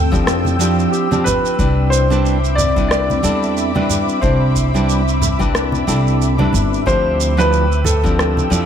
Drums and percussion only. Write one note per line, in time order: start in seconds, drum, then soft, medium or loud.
0.13 kick loud
0.13 shaker soft
0.27 cross-stick medium
0.27 shaker soft
0.45 high conga medium
0.45 shaker soft
0.60 shaker medium
0.79 shaker soft
0.94 shaker soft
1.12 high conga medium
1.12 shaker soft
1.26 kick medium
1.26 low conga medium
1.26 shaker medium
1.46 shaker soft
1.59 kick loud
1.59 shaker soft
1.93 shaker medium
2.12 shaker soft
2.26 shaker soft
2.44 shaker soft
2.58 low conga medium
2.58 shaker medium
2.77 kick medium
2.77 shaker soft
2.91 cross-stick medium
2.91 shaker soft
3.10 high conga medium
3.10 shaker soft
3.24 shaker medium
3.43 shaker soft
3.57 shaker soft
3.76 high conga medium
3.90 low conga medium
3.90 shaker medium
4.09 shaker soft
4.23 kick loud
4.23 shaker soft
4.56 kick soft
4.56 shaker medium
4.76 shaker soft
4.89 shaker soft
5.08 shaker soft
5.22 low conga medium
5.22 shaker medium
5.41 kick loud
5.41 shaker soft
5.55 cross-stick medium
5.55 shaker soft
5.72 high conga medium
5.72 shaker soft
5.89 shaker medium
6.08 shaker soft
6.22 shaker soft
6.39 high conga medium
6.53 kick medium
6.53 low conga medium
6.53 shaker medium
6.74 shaker soft
6.87 kick loud
6.87 shaker soft
7.20 shaker medium
7.40 shaker soft
7.53 shaker soft
7.72 shaker soft
7.84 low conga medium
7.84 shaker medium
8.04 kick medium
8.04 shaker soft
8.19 cross-stick medium
8.19 shaker soft
8.37 high conga medium
8.37 shaker soft
8.52 shaker medium